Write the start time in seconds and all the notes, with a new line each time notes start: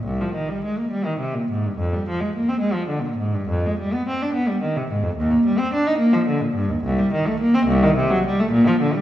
0.04 C2
0.21 F3
0.35 D#3
0.49 G3
0.64 G#3
0.78 A#3
0.91 G3
1.06 D#3
1.20 C3
1.35 A#2
1.51 G#2
1.66 G2
1.78 F2
1.94 G3
2.09 F3
2.20 G#3
2.35 A#3
2.49 C4
2.60 G#3
2.73 F3
2.88 D3
3.02 A#2
3.17 G#2
3.34 G2
3.49 F2
3.66 G#3
3.79 G3
3.93 B3
4.08 C4
4.22 D4
4.34 B3
4.49 G3
4.62 D#3
4.77 C3
4.91 G#2
5.04 F2
5.17 D#2
5.31 A#3
5.46 G3
5.58 C4
5.74 D4
5.87 D#4
5.98 A#3
6.13 F3
6.27 D3
6.41 A#2
6.55 G2
6.69 D#2
6.84 C2
6.99 G3
7.13 D#3
7.27 A3
7.40 A#3
7.54 C4
7.66 C2
7.83 D#3
7.96 C3
8.10 F#3
8.25 G3
8.40 A3
8.51 A#2
8.67 F3
8.81 D3
8.94 G3